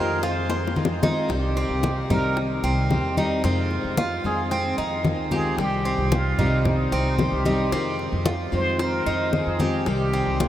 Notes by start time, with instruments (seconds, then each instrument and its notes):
Already playing: upright bass F2, steel-string acoustic guitar D#3 G#3 C4 F4, nylon-string guitar G4, muted trumpet A#4, cuban tres C5
0.23 cuban tres F4, nylon-string guitar G#4, muted trumpet C5, high bongo, high conga
0.49 cuban tres C5, high bongo, high conga
0.67 high bongo
0.76 steel-string acoustic guitar D#3 G#3 C4 F4, high conga
0.85 low bongo
1.02 steel-string acoustic guitar D#3 G#3 C4 F4, cuban tres D#4, low bongo, high conga
1.29 upright bass C2, steel-string acoustic guitar C3 D#3 G3 C4 G4, high bongo, high conga
1.33 muted trumpet G4
1.57 cuban tres C4, high bongo, high conga
1.69 upright bass C2
1.83 muted steel-string acoustic guitar stroke, high bongo, high conga
2.10 upright bass C2, steel-string acoustic guitar D#3 G3 C4 G4, cuban tres D#4, muted trumpet A#4, high conga, low conga
2.37 high bongo, high conga
2.63 upright bass C2, cuban tres C4, high bongo, high conga
2.90 steel-string acoustic guitar D#3 G3 C4 G4, high bongo, low bongo, high conga
3.04 upright bass E2
3.17 steel-string acoustic guitar D#3 G3 C4 G4, cuban tres D#4, high bongo, high conga
3.44 upright bass F2, steel-string acoustic guitar C3 D#3 G#3 C4 F4, cuban tres C4, high bongo, high conga
3.48 muted trumpet F4
3.71 high bongo, high conga
3.84 upright bass F2
3.97 cuban tres F4, muted steel-string acoustic guitar stroke, high bongo, high conga
4.24 upright bass F2, steel-string acoustic guitar D#3 G#3 C4 F4, muted trumpet G#4, high conga
4.51 cuban tres C4, high bongo, high conga
4.78 upright bass F2, cuban tres D#4, high bongo, high conga
5.04 steel-string acoustic guitar D#3 G#3 C4 F4, high bongo, low bongo, high conga
5.18 upright bass D2
5.31 steel-string acoustic guitar D#3 G#3 C4 F4, cuban tres G4, muted trumpet G#4, high bongo, high conga
5.58 upright bass C2, steel-string acoustic guitar C3 D#3 G3 C4 G4, muted trumpet G4, high bongo, high conga
5.85 cuban tres C4, high bongo, high conga
5.98 upright bass C2
6.12 muted trumpet F4, muted steel-string acoustic guitar stroke, high bongo, high conga
6.38 upright bass C2, steel-string acoustic guitar D#3 G3 C4 G4, cuban tres D#4, high conga, low conga
6.65 muted trumpet D#4, high bongo, high conga, low conga
6.92 upright bass C2, cuban tres C4, high bongo, high conga
7.18 steel-string acoustic guitar D#3 G3 C4 G4, muted trumpet G4, high bongo, low bongo, high conga
7.32 upright bass C2
7.45 steel-string acoustic guitar D#3 G3 C4 G4, cuban tres D#4, high bongo, high conga
7.72 upright bass F2, steel-string acoustic guitar C3 D#3 G#3 C4 F4, cuban tres C4, high bongo, high conga
7.99 high bongo, high conga
8.12 upright bass F2
8.26 cuban tres F4, muted steel-string acoustic guitar stroke, high bongo, high conga
8.52 upright bass F2, steel-string acoustic guitar D#3 G#3 C4 F4, muted trumpet C5, high conga
8.79 cuban tres C4, muted trumpet A#4, high bongo, high conga
9.06 upright bass F2, cuban tres D#4, high bongo, high conga
9.33 steel-string acoustic guitar D#3 G#3 C4 F4, high bongo, low bongo, high conga
9.38 muted trumpet G#4
9.46 upright bass F2
9.59 steel-string acoustic guitar D#3 G#3 C4 F4, cuban tres G4, high bongo, high conga
9.86 upright bass C2, steel-string acoustic guitar C3 D#3 G3 C4 G4, high bongo, high conga
9.91 muted trumpet G4
10.13 cuban tres C4, high bongo, high conga
10.27 upright bass C2
10.40 muted steel-string acoustic guitar stroke, high bongo, high conga
10.45 muted trumpet A#4